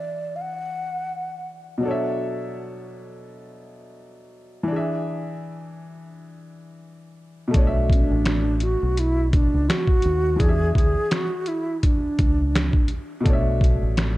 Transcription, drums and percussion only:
7.54 kick loud
7.54 closed hi-hat medium
7.90 kick medium
7.90 closed hi-hat medium
8.25 finger snap medium
8.25 snare loud
8.25 closed hi-hat medium
8.60 closed hi-hat medium
8.97 closed hi-hat medium
9.33 kick loud
9.33 closed hi-hat medium
9.70 finger snap medium
9.70 snare loud
9.70 closed hi-hat medium
9.87 kick medium
10.02 closed hi-hat medium
10.40 kick loud
10.40 closed hi-hat medium
10.75 kick medium
10.75 closed hi-hat medium
11.11 finger snap medium
11.11 snare loud
11.11 closed hi-hat medium
11.46 closed hi-hat medium
11.83 kick medium
11.83 closed hi-hat medium
12.19 kick loud
12.19 closed hi-hat medium
12.55 finger snap medium
12.55 snare loud
12.55 closed hi-hat medium
12.73 kick loud
12.88 closed hi-hat medium
13.26 kick loud
13.26 closed hi-hat medium
13.61 kick medium
13.61 closed hi-hat medium
13.97 finger snap medium
13.97 snare loud
13.97 closed hi-hat medium

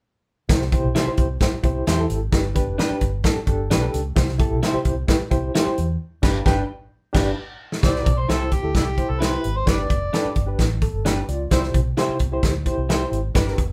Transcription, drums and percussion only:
0.49 kick medium
0.49 snare loud
0.49 closed hi-hat loud
0.61 snare soft
0.72 kick medium
0.72 closed hi-hat medium
0.95 snare medium
0.95 closed hi-hat medium
1.17 kick medium
1.17 closed hi-hat medium
1.41 kick medium
1.41 snare loud
1.41 closed hi-hat medium
1.63 kick medium
1.63 closed hi-hat medium
1.87 snare loud
1.87 closed hi-hat loud
2.10 closed hi-hat medium
2.32 kick loud
2.32 snare loud
2.32 closed hi-hat medium
2.55 kick medium
2.55 closed hi-hat medium
2.79 snare medium
2.79 closed hi-hat medium
3.01 kick medium
3.01 closed hi-hat medium
3.24 kick medium
3.24 snare loud
3.24 closed hi-hat medium
3.47 kick medium
3.47 closed hi-hat medium
3.71 snare loud
3.71 closed hi-hat loud
3.94 closed hi-hat medium
4.16 kick loud
4.16 snare loud
4.16 closed hi-hat medium
4.28 snare soft
4.39 kick loud
4.39 closed hi-hat medium
4.63 snare medium
4.63 closed hi-hat medium
4.85 kick medium
4.85 closed hi-hat medium
5.08 kick medium
5.08 snare loud
5.08 closed hi-hat medium
5.31 kick medium
5.31 closed hi-hat medium
5.55 snare loud
5.55 closed hi-hat loud
5.78 closed hi-hat medium
6.23 kick loud
6.23 snare loud
6.23 crash medium
6.46 kick loud
6.46 snare medium
7.14 kick medium
7.14 snare loud
7.14 crash medium
7.72 snare medium
7.83 kick medium
7.83 snare loud
7.83 closed hi-hat medium
7.95 snare soft
8.06 kick loud
8.06 closed hi-hat medium
8.29 snare medium
8.29 closed hi-hat medium
8.51 kick medium
8.51 closed hi-hat medium
8.75 kick medium
8.75 snare loud
8.75 closed hi-hat medium
8.98 kick medium
8.98 closed hi-hat soft
9.22 snare loud
9.22 closed hi-hat loud
9.44 closed hi-hat medium
9.67 kick medium
9.67 snare loud
9.67 closed hi-hat medium
9.90 kick medium
9.90 closed hi-hat medium
10.13 snare medium
10.13 closed hi-hat medium
10.35 kick medium
10.35 closed hi-hat medium
10.59 kick medium
10.59 snare medium
10.59 closed hi-hat medium
10.82 kick medium
10.82 closed hi-hat medium
11.06 snare loud
11.06 closed hi-hat loud
11.28 closed hi-hat medium
11.51 kick medium
11.51 snare medium
11.51 closed hi-hat medium
11.63 snare soft
11.74 kick medium
11.74 closed hi-hat medium
11.97 snare medium
11.97 closed hi-hat medium
12.19 kick medium
12.19 closed hi-hat medium
12.43 kick medium
12.43 snare medium
12.43 closed hi-hat medium
12.66 kick medium
12.66 closed hi-hat medium
12.90 snare loud
12.90 closed hi-hat medium
13.13 closed hi-hat medium
13.35 kick medium
13.35 snare loud
13.35 closed hi-hat medium
13.47 snare soft
13.58 kick medium
13.58 closed hi-hat medium

